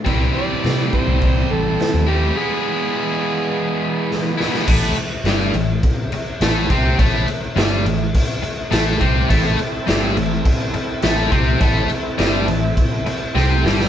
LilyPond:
<<
  \new Staff \with { instrumentName = "Harmonica" } { \time 4/4 \key a \minor \tempo 4 = 104 r8 d''4 c''4 a'4 g'8 | gis'2.~ gis'8 r8 | r1 | r1 |
r1 | r1 | }
  \new Staff \with { instrumentName = "Tonewheel organ" } { \time 4/4 \key a \minor <c' e' g'>1 | <b e' gis'>1 | r1 | r1 |
<c' e' a'>1 | <c' e' a'>1 | }
  \new Staff \with { instrumentName = "Distorted electric guitar" } { \clef bass \time 4/4 \key a \minor <c e g c' e'>2.~ <c e g c' e'>8 <c e g c' e'>8 | <e gis b e'>2.~ <e gis b e'>8 <e gis b e'>8 | <a, a>8 r8 <g, g>8 a,8 r4 <a, a>8 <c c'>8 | <a, a>8 r8 <g, g>8 a,8 r4 <a, a>8 <c c'>8 |
<a, a>8 r8 <g, g>8 a,8 r4 <a, a>8 <c c'>8 | <a, a>8 r8 <g, g>8 a,8 r4 <c c'>8 <g, g>8 | }
  \new Staff \with { instrumentName = "Fingered electric bass" } { \clef bass \time 4/4 \key a \minor c,8 r8 c8 r16 c,8. a,,8 r16 dis,8. | r1 | a,,8 r8 g,,8 a,,8 r4 a,,8 c,8 | a,,8 r8 g,,8 a,,8 r4 a,,8 c,8 |
a,,8 r8 g,,8 a,,8 r4 a,,8 c,8 | a,,8 r8 g,,8 a,,8 r4 c,8 g,,8 | }
  \new DrumStaff \with { instrumentName = "Drums" } \drummode { \time 4/4 <hho bd>4 <hho sn>8 bd8 <hho bd>4 <hho sn>4 | r4 r4 r4 sn8 sn16 sn16 | <cymc bd>8 cymc8 <cymc sn>8 cymc8 <cymc bd>8 cymc8 <cymc sn>8 <cymc bd>8 | <cymc bd>8 cymc8 <cymc sn>8 cymc8 <cymc bd>8 cymc8 <cymc sn>8 <cymc bd>8 |
<cymc bd>8 cymc8 <cymc sn>8 cymc8 <cymc bd>8 cymc8 <cymc sn>8 <cymc bd>8 | <cymc bd>8 cymc8 <cymc sn>8 cymc8 <cymc bd>8 cymc8 sn8 sn16 sn16 | }
>>